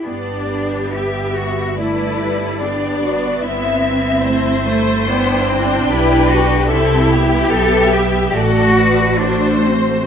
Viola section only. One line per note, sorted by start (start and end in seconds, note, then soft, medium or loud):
0.05 0.45 B3 soft
0.05 1.73 G4 medium
0.48 1.75 B3 medium
1.77 2.20 A3 medium
1.77 2.61 A4 medium
2.20 2.61 G3 medium
2.62 4.26 B3 medium
2.62 3.03 G4 medium
3.03 3.44 F#4 medium
3.44 5.04 E4 medium
4.26 5.06 A3 medium
5.07 6.70 D4 medium
5.07 5.87 E4 medium
5.90 6.68 G4 medium
6.70 7.11 C4 medium
6.70 8.32 G4 medium
7.11 8.35 B3 medium
8.35 10.06 A3 medium
8.35 10.06 F#4 medium